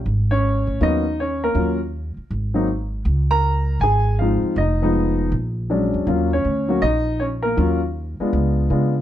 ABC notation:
X:1
M:4/4
L:1/8
Q:"Swing" 1/4=159
K:Ebm
V:1 name="Grand piano"
z [Dd]3 [Ee]2 [Dd] [B,B]- | [B,B] z6 z | z [Bb]3 [Aa]2 [Ff]2 | [Ee]3 z4 z |
z [Dd]3 [Ee]2 [Dd] [B,B]- | [B,B] z6 z |]
V:2 name="Grand piano"
z4 [G,B,CD] z3 | [G,B,DF] z4 [G,B,=CE] z2 | z6 [F,A,=CE]2 | z [F,A,CE]3 z2 [^F,A,^C=D]2 |
[G,B,DF] z2 [G,B,DG] z4 | [G,B,DF] z2 [A,C=DF]3 [A,CDF] z |]
V:3 name="Upright bass" clef=bass
A,,,3 =A,,, E,,4 | E,,3 z A,,,4 | D,,4 A,,,3 z | F,,,4 B,,,3 _F,, |
E,,2 =D,,2 B,,,4 | E,,3 z D,,2 D,2 |]